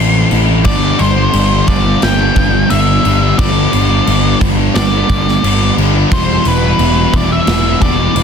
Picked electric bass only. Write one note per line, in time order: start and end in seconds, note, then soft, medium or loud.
0.00 0.24 A1 medium
0.31 0.66 A1 medium
0.66 0.92 G1 medium
1.00 1.27 G1 medium
1.34 1.61 G1 medium
1.68 1.95 G1 medium
2.03 2.29 G1 medium
2.37 2.63 G1 medium
2.71 2.98 G1 medium
3.05 3.32 G1 medium
3.39 3.65 G1 medium
3.74 4.00 G1 medium
4.07 4.34 G1 medium
4.41 4.68 G1 loud
4.76 5.02 G1 medium
5.10 5.36 G1 loud
5.43 5.70 G1 medium
5.77 6.04 G1 medium
6.12 6.38 E1 loud
6.46 6.72 E1 medium
6.79 7.06 E1 loud
7.14 7.40 E1 medium
7.47 7.74 E1 loud
7.82 8.08 E1 medium
8.15 8.23 E1 medium